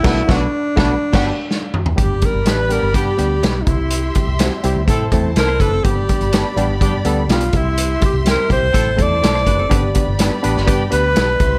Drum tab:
CC |x--------x------|----------------|----------------|----------------|
HH |----------------|x-x-x-x-x-x-x-x-|x-x-x-x-x-x-x-x-|x-xxx-x-x-x-xxx-|
SD |o-o---o--o--o---|----o-------o---|----o-------o---|----o-------o---|
T2 |--------------o-|----------------|----------------|----------------|
FT |---------------o|----------------|----------------|----------------|
BD |o-o---o--o------|o-o-----o-----o-|--o-----o-o---o-|o-o-----o-----o-|

CC |----------------|----------------|
HH |x-x-x-x-x-x-x-x-|x-x-x-x-x-x-x-x-|
SD |----o-------oo--|----o--o----o---|
T2 |----------------|----------------|
FT |----------------|----------------|
BD |--o---o-o-o---o-|o-o-----o-----o-|